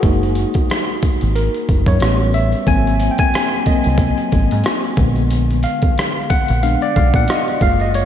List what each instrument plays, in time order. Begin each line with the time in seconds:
Already playing: tine electric piano F#4
0.03 picked electric bass F#1, tine electric piano G#3 A#3 D#4, kick, closed hi-hat
0.23 closed hi-hat
0.35 closed hi-hat
0.54 kick, closed hi-hat
0.70 cross-stick, closed hi-hat
0.90 closed hi-hat
1.02 muted picked electric bass stroke, kick, closed hi-hat
1.21 picked electric bass G#1, closed hi-hat
1.36 tine electric piano A#4, closed hi-hat
1.54 closed hi-hat
1.69 picked electric bass F#1, kick, closed hi-hat
1.86 picked electric bass F#2, tine electric piano C#5, kick, closed hi-hat
2.00 picked electric bass A1, tine electric piano G3 B3 C#4, cross-stick, closed hi-hat
2.21 closed hi-hat
2.34 tine electric piano E5, closed hi-hat
2.52 closed hi-hat
2.67 picked electric bass G#1, tine electric piano F#3 A#3 C4 G#5, kick, closed hi-hat
2.87 closed hi-hat
3.00 closed hi-hat
3.11 tine electric piano G5
3.18 tine electric piano G#5, kick, closed hi-hat
3.34 cross-stick, closed hi-hat
3.53 closed hi-hat
3.66 tine electric piano F#3 A#3 C4 D#5, muted picked electric bass stroke, kick, closed hi-hat
3.84 picked electric bass C2, closed hi-hat
3.98 kick, closed hi-hat
4.18 closed hi-hat
4.32 picked electric bass G#1, kick, closed hi-hat
4.51 picked electric bass G#2, closed hi-hat
4.64 cross-stick, closed hi-hat
4.84 closed hi-hat
4.97 picked electric bass A#1, tine electric piano D3 G#3 B3, kick, closed hi-hat
5.16 closed hi-hat
5.30 closed hi-hat
5.50 closed hi-hat
5.63 tine electric piano F5, closed hi-hat
5.82 kick, closed hi-hat
5.98 cross-stick, closed hi-hat
6.18 closed hi-hat
6.30 tine electric piano F#5, muted picked electric bass stroke, kick, closed hi-hat
6.48 picked electric bass A#1, closed hi-hat
6.63 tine electric piano G#3 B3 D4 F5, closed hi-hat
6.82 tine electric piano D5, closed hi-hat
6.96 picked electric bass B1, tine electric piano F5, kick, closed hi-hat
7.14 picked electric bass A#2, tine electric piano F#5, kick, closed hi-hat
7.28 tine electric piano D#5, cross-stick, closed hi-hat
7.48 closed hi-hat
7.61 picked electric bass F#1, tine electric piano G#3 A#3 F4 F5, kick, closed hi-hat
7.80 tine electric piano D#5, closed hi-hat
7.94 tine electric piano C#5, closed hi-hat